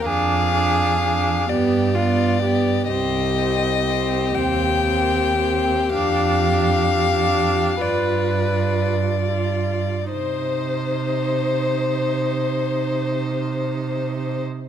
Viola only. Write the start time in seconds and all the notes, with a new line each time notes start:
0.05 D4
0.54 D4
1.01 D4
1.50 B3
1.96 B3
2.42 B3
2.90 C4
3.37 C4
3.86 C4
4.35 C4
4.86 C4
5.38 C4
5.93 D4
6.52 D4
7.14 D4
7.80 F4
8.51 F4
9.31 F4
10.12 D#4